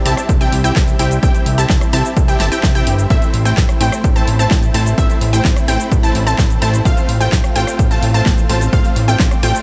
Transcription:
Already playing: analog synth pad G3 C4 E4 C5 E5
0.06 analog synth bass C2, supersaw synth C4 E4 G4 E5 A5, synth pluck A5, open hi-hat
0.17 cross-stick, closed hi-hat, shaker
0.29 analog synth bass C2, kick, closed hi-hat, shaker
0.41 supersaw synth C4 E4 G4 E5 G5, synth pluck G5, closed hi-hat, shaker
0.52 analog synth bass C2, open hi-hat
0.64 supersaw synth C4 E4 G4 E5 G5, synth pluck G5, closed hi-hat, shaker
0.76 analog synth bass C2, kick, snare, closed hi-hat, shaker
0.88 closed hi-hat, shaker
0.99 analog synth bass C2, supersaw synth C4 E4 G4 E5 G5, synth pluck G5, open hi-hat
1.11 closed hi-hat, shaker
1.23 analog synth bass C2, supersaw synth C4 E4 G4 E5 G5, synth pluck G5, kick, closed hi-hat, shaker
1.34 closed hi-hat, shaker
1.46 analog synth bass C2, open hi-hat
1.58 supersaw synth C4 E4 G4 E5 A5, synth pluck A5, closed hi-hat, shaker
1.70 analog synth bass C2, kick, snare, closed hi-hat, shaker
1.81 cross-stick, closed hi-hat, shaker
1.93 analog synth bass C2, supersaw synth C4 E4 G4 E5 A5, synth pluck A5, open hi-hat
2.05 closed hi-hat, shaker
2.16 analog synth bass C2, kick, closed hi-hat, shaker
2.28 supersaw synth C4 E4 G4 E5 G5, synth pluck G5, closed hi-hat, shaker
2.40 analog synth bass G1, supersaw synth C4 E4 G4 E5 A5, synth pluck A5, snare, open hi-hat
2.52 supersaw synth C4 E4 G4 E5 G5, synth pluck G5, closed hi-hat, shaker
2.63 analog synth bass C2, kick, snare, closed hi-hat, shaker
2.75 supersaw synth C4 E4 G4 E5 G5, synth pluck G5, closed hi-hat, shaker
2.87 analog synth bass G1, open hi-hat
2.99 closed hi-hat, shaker
3.10 analog synth bass A1, supersaw synth A3 C4 E4 C5 E5, analog synth pad A3, synth pluck E5, kick, closed hi-hat, shaker
3.22 closed hi-hat, shaker
3.34 analog synth bass A1, open hi-hat
3.45 supersaw synth A3 C4 E4 C5 G5, synth pluck G5, closed hi-hat, shaker
3.57 analog synth bass A1, kick, snare, closed hi-hat, shaker
3.69 cross-stick, closed hi-hat, shaker
3.80 analog synth bass A1, supersaw synth A3 C4 E4 C5 G5, synth pluck G5, open hi-hat
3.92 cross-stick, closed hi-hat, shaker
4.04 analog synth bass A1, kick, closed hi-hat, shaker
4.16 supersaw synth A3 C4 E4 C5 A5, synth pluck A5, closed hi-hat, shaker
4.27 analog synth bass A1, open hi-hat
4.39 supersaw synth A3 C4 E4 C5 A5, synth pluck A5, closed hi-hat, shaker
4.51 analog synth bass A1, kick, snare, closed hi-hat, shaker
4.63 closed hi-hat, shaker
4.74 analog synth bass A1, supersaw synth A3 C4 E4 C5 A5, synth pluck A5, open hi-hat
4.86 closed hi-hat, shaker
4.98 analog synth bass A1, supersaw synth A3 C4 E4 C5 E5, synth pluck E5, analog synth pad B5, kick, closed hi-hat, shaker
5.10 closed hi-hat, shaker
5.21 analog synth bass A1, open hi-hat
5.33 supersaw synth A3 C4 E4 C5 G5, synth pluck G5, closed hi-hat, shaker
5.45 analog synth bass A1, kick, snare, closed hi-hat, shaker
5.56 cross-stick, closed hi-hat, shaker
5.68 analog synth bass A1, supersaw synth A3 C4 E4 C5 G5, synth pluck G5, open hi-hat
5.80 closed hi-hat, shaker
5.92 analog synth bass A1, kick, closed hi-hat, shaker
6.03 supersaw synth A3 C4 E4 C5 A5, synth pluck A5, closed hi-hat, shaker
6.15 analog synth bass A1, open hi-hat
6.27 supersaw synth A3 C4 E4 C5 A5, synth pluck A5, closed hi-hat, shaker
6.38 analog synth bass A1, kick, snare, closed hi-hat, shaker
6.50 closed hi-hat, shaker
6.62 analog synth bass A1, supersaw synth A3 C4 E4 C5 A5, synth pluck A5, open hi-hat
6.74 closed hi-hat, shaker
6.85 analog synth bass A1, supersaw synth A3 C4 F4 C5 F5, analog synth pad F4 C5 F5, synth pluck F5, kick, closed hi-hat, shaker
6.97 closed hi-hat, shaker
7.09 analog synth bass A1, open hi-hat
7.20 supersaw synth A3 C4 F4 C5 G5, synth pluck G5, closed hi-hat, shaker
7.32 analog synth bass A1, kick, snare, closed hi-hat, shaker
7.44 cross-stick, closed hi-hat, shaker
7.56 analog synth bass A1, supersaw synth A3 C4 F4 C5 G5, synth pluck G5, open hi-hat
7.67 cross-stick, closed hi-hat, shaker
7.79 analog synth bass A1, kick, closed hi-hat, shaker
7.91 supersaw synth A3 C4 F4 C5 A5, synth pluck A5, closed hi-hat, shaker
8.03 analog synth bass A1, open hi-hat
8.14 supersaw synth A3 C4 F4 C5 A5, synth pluck A5, closed hi-hat, shaker
8.26 analog synth bass A1, kick, snare, closed hi-hat, shaker
8.38 closed hi-hat, shaker
8.49 analog synth bass A1, supersaw synth A3 C4 F4 C5 A5, synth pluck A5, open hi-hat
8.61 closed hi-hat, shaker
8.73 analog synth bass A1, supersaw synth A3 C4 F4 C5 F5, analog synth pad D5, synth pluck F5, kick, closed hi-hat, shaker
8.85 closed hi-hat, shaker
8.96 analog synth bass A1, open hi-hat
9.08 supersaw synth A3 C4 F4 C5 G5, synth pluck G5, closed hi-hat, shaker
9.20 analog synth bass A1, kick, snare, closed hi-hat, shaker
9.31 cross-stick, closed hi-hat, shaker
9.43 analog synth bass A1, supersaw synth A3 C4 F4 C5 G5, synth pluck G5, open hi-hat
9.55 closed hi-hat, shaker

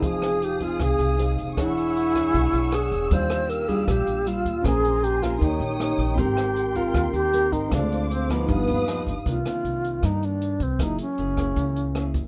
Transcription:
Already playing: nylon-string guitar C4 D#4 G#4
0.00 upright bass F1, nylon-string guitar F3, tine electric piano D#4 G#4 C5, string section G#4 F5 D#6, kick, closed hi-hat
0.05 alto flute G#4, tine electric piano F5
0.22 cross-stick, closed hi-hat
0.42 alto flute G4, closed hi-hat
0.60 nylon-string guitar C4 D#4 G#4, alto flute F4, kick, closed hi-hat
0.79 upright bass C2, nylon-string guitar C3, alto flute G#4, kick, cross-stick, closed hi-hat
0.99 upright bass C2, closed hi-hat
1.18 nylon-string guitar C4 D#4 G#4, tine electric piano D#4 G#4 C5 F5, closed hi-hat
1.38 upright bass F1, kick, closed hi-hat
1.55 upright bass E1, nylon-string guitar E3 D4 G#4 C#5, tine electric piano D4 G#4 C#5, alto flute E4, string section G#4 F#5 C#6 E6, kick, cross-stick, closed hi-hat
1.61 tine electric piano F#5
1.77 closed hi-hat
1.96 closed hi-hat
2.15 nylon-string guitar D4 G#4 C#5, kick, cross-stick, closed hi-hat
2.34 upright bass B1, nylon-string guitar B2, kick, closed hi-hat
2.53 upright bass B1, closed hi-hat
2.72 nylon-string guitar D4 G#4 C#5, alto flute G#4, cross-stick, closed hi-hat
2.92 upright bass E1, kick, closed hi-hat
3.10 upright bass D#2, nylon-string guitar D#3 G3 D4 F4, string section G4 F5, tine electric piano G4 D5, alto flute C5, kick, closed hi-hat
3.15 tine electric piano F5
3.30 cross-stick, closed hi-hat
3.49 alto flute A#4, closed hi-hat
3.68 nylon-string guitar G3 D4 F4, alto flute G#4, kick, closed hi-hat
3.88 upright bass A#1, nylon-string guitar A#2, alto flute G4, kick, cross-stick, closed hi-hat
4.07 upright bass A#1, closed hi-hat
4.26 nylon-string guitar G3 D4 F4, alto flute F4, closed hi-hat
4.45 upright bass D#2, kick, closed hi-hat
4.62 upright bass A#1, nylon-string guitar A#3 C#4 G#4 C5, tine electric piano C#4 A#4 C5, alto flute G#4, kick, cross-stick, closed hi-hat
4.66 string section G#5 A#5 C6, tine electric piano G#5
4.84 closed hi-hat
5.04 alto flute G4, closed hi-hat
5.22 nylon-string guitar A#3 C#4 G4, alto flute F4, kick, cross-stick, closed hi-hat
5.38 upright bass D#2, nylon-string guitar D#3, tine electric piano D#4 A#4 C#5, alto flute D#4, string section C#5 D#6, kick, closed hi-hat
5.43 string section G5, tine electric piano G5
5.60 upright bass A#1, closed hi-hat
5.79 nylon-string guitar A#3 C#4 G4, alto flute D#4, cross-stick, closed hi-hat
5.98 upright bass A#1, kick, closed hi-hat
6.15 upright bass G#1, nylon-string guitar G#3 C4 G4 A#4, tine electric piano C4 A#4, alto flute G4, string section A#4 C6, kick, closed hi-hat
6.21 tine electric piano G5
6.37 cross-stick, closed hi-hat
6.56 closed hi-hat
6.75 nylon-string guitar C4 G4 A#4, alto flute F4, kick, closed hi-hat
6.94 upright bass D#2, nylon-string guitar D#3, kick, cross-stick, closed hi-hat
7.13 upright bass D#2, alto flute G4, closed hi-hat
7.33 nylon-string guitar C4 G4 A#4, closed hi-hat
7.52 upright bass G#1, alto flute D#4, kick, closed hi-hat
7.70 upright bass D2, nylon-string guitar D3 G#3 C4 F4, tine electric piano D4 G#4, alto flute D4, string section C5 D6, kick, cross-stick, closed hi-hat
7.74 tine electric piano C5 F5, string section F5
7.92 closed hi-hat
8.11 alto flute C4, closed hi-hat
8.29 nylon-string guitar F3 B3 D#4, alto flute B3, kick, cross-stick, closed hi-hat
8.46 upright bass G1, nylon-string guitar G2, tine electric piano D#4 G4 B4, string section B4 F5 D#6, kick, closed hi-hat
8.52 tine electric piano F5
8.68 upright bass D#2, closed hi-hat
8.88 nylon-string guitar F3 B3 D#4, cross-stick, closed hi-hat
9.07 upright bass G1, kick, closed hi-hat
9.26 upright bass C2, nylon-string guitar C3 D#3 A#3 D4, alto flute F4, kick, closed hi-hat
9.45 nylon-string guitar D#3 A#3 D4, cross-stick, closed hi-hat
9.64 upright bass C2, closed hi-hat
9.84 closed hi-hat
10.03 nylon-string guitar G2 D#3 A#3 D4, upright bass G2, alto flute D#4, kick, cross-stick, closed hi-hat
10.22 alto flute D4, closed hi-hat
10.42 closed hi-hat
10.60 upright bass C2, alto flute C4, kick, closed hi-hat
10.79 upright bass F#1, nylon-string guitar F#3 A#3 E4 G#4, alto flute D#4, kick, cross-stick, closed hi-hat
10.98 alto flute C#4, closed hi-hat
11.18 upright bass F#1, nylon-string guitar A#3 E4 G#4, closed hi-hat
11.37 nylon-string guitar A#3 E4 G#4, kick, cross-stick, closed hi-hat
11.56 upright bass C#2, nylon-string guitar C#3, kick, closed hi-hat
11.76 closed hi-hat
11.95 nylon-string guitar A#3 E4 G#4, cross-stick, closed hi-hat
12.14 upright bass F#1, kick, closed hi-hat

